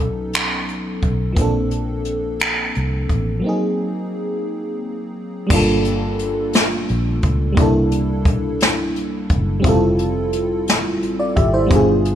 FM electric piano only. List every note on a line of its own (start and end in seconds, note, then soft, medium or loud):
0.00 1.31 F#3 medium
0.00 1.32 B3 medium
0.00 1.33 C#4 medium
0.00 1.34 D#4 medium
0.00 1.35 A4 medium
1.33 3.37 F3 medium
1.33 3.39 A#3 medium
1.37 3.40 C4 medium
1.37 3.41 D4 medium
1.42 3.42 A4 medium
3.40 5.44 F#3 medium
3.40 5.45 A#3 medium
3.44 5.47 C4 medium
3.44 5.48 D#4 medium
3.49 5.49 G#4 medium
5.47 7.51 G3 medium
5.47 7.52 A#3 medium
5.51 7.54 D4 medium
5.51 7.55 F4 medium
5.56 7.56 A4 medium
7.52 9.58 G3 medium
7.52 9.59 A#3 medium
7.57 9.60 D4 medium
7.57 9.61 E4 medium
7.62 9.62 A4 medium
9.60 11.65 G3 medium
9.60 11.66 C4 medium
9.64 10.99 E4 medium
9.64 11.00 F4 medium
9.69 11.02 A4 medium
11.20 11.36 F4 soft
11.20 11.36 D5 medium
11.36 11.53 G4 medium
11.36 11.53 E5 medium
11.54 11.87 E4 medium
11.54 11.86 C5 medium
11.66 12.15 G3 medium
11.66 12.15 B3 medium
11.71 12.15 D4 medium
11.71 12.15 F4 medium
11.76 12.15 G#4 medium